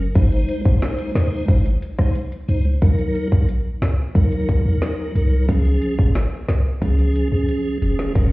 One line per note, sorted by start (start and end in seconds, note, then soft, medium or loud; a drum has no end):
0.00 0.11 F#1 medium
0.15 0.44 G#1 loud
0.15 0.61 G#3 loud
0.15 0.61 D#4 medium
0.15 0.61 C5 loud
0.15 kick loud
0.15 closed hi-hat medium
0.32 closed hi-hat medium
0.49 closed hi-hat medium
0.65 0.80 G#1 medium
0.65 1.11 G#3 medium
0.65 1.11 D#4 medium
0.65 1.12 C5 medium
0.65 kick loud
0.82 snare loud
0.82 closed hi-hat medium
0.98 closed hi-hat medium
1.15 1.44 D#2 loud
1.15 1.46 G#3 medium
1.15 1.46 D#4 medium
1.15 1.46 C5 medium
1.15 snare loud
1.15 closed hi-hat medium
1.48 1.77 G#1 loud
1.48 1.65 G#3 medium
1.48 1.65 D#4 medium
1.48 1.65 C5 loud
1.48 kick loud
1.48 closed hi-hat medium
1.66 closed hi-hat medium
1.82 closed hi-hat medium
1.99 2.15 G#3 medium
1.99 2.15 D#4 medium
1.99 2.15 C5 medium
1.99 kick loud
1.99 cross-stick loud
2.15 closed hi-hat medium
2.32 closed hi-hat medium
2.48 2.77 C#2 medium
2.48 2.65 G#3 medium
2.48 2.65 D#4 medium
2.48 2.65 C5 medium
2.48 closed hi-hat medium
2.82 3.11 D#2 loud
2.82 3.28 F#3 medium
2.82 3.28 D#4 medium
2.82 3.28 A#4 loud
2.82 kick loud
2.82 closed hi-hat medium
2.99 closed hi-hat medium
3.15 closed hi-hat medium
3.32 3.61 A#1 medium
3.32 3.49 F#3 medium
3.32 3.49 D#4 medium
3.32 3.49 A#4 medium
3.32 kick loud
3.49 closed hi-hat medium
3.82 3.96 C#2 loud
3.82 snare loud
3.82 closed hi-hat medium
4.15 4.58 D#2 loud
4.15 4.61 F#3 medium
4.15 4.61 D#4 medium
4.15 4.62 A#4 loud
4.15 kick loud
4.15 closed hi-hat medium
4.32 closed hi-hat medium
4.49 kick medium
4.49 closed hi-hat medium
4.65 4.80 D#2 medium
4.65 5.11 F#3 medium
4.65 5.12 D#4 medium
4.65 5.12 A#4 medium
4.82 snare loud
4.82 closed hi-hat medium
5.15 5.44 C2 loud
5.15 5.46 F#3 medium
5.15 5.46 D#4 medium
5.15 5.46 A#4 medium
5.15 closed hi-hat medium
5.48 5.77 C#2 loud
5.48 5.95 F3 medium
5.48 5.95 C#4 medium
5.48 5.95 G#4 loud
5.48 kick loud
5.48 closed hi-hat medium
5.65 closed hi-hat medium
5.82 closed hi-hat medium
5.98 6.27 G#1 medium
5.98 6.15 F3 medium
5.98 6.15 C#4 medium
5.98 6.16 G#4 medium
5.98 kick loud
6.15 snare loud
6.15 closed hi-hat medium
6.49 6.63 C2 loud
6.49 snare loud
6.49 closed hi-hat medium
6.82 7.25 C#2 loud
6.82 7.28 F3 medium
6.82 7.28 C#4 medium
6.82 7.28 G#4 loud
6.82 kick medium
6.82 closed hi-hat medium
6.99 closed hi-hat medium
7.16 closed hi-hat medium
7.32 7.46 C#2 medium
7.32 7.78 F3 medium
7.32 7.78 C#4 medium
7.32 7.78 G#4 medium
7.49 closed hi-hat medium
7.82 8.11 F1 loud
7.82 8.13 F3 medium
7.82 8.13 C#4 medium
7.82 8.13 G#4 medium
7.82 closed hi-hat medium
7.99 snare medium
8.15 8.32 F#1 loud
8.15 8.32 F#3 medium
8.15 8.32 C#4 medium
8.15 8.32 A#4 loud
8.15 kick loud
8.15 closed hi-hat medium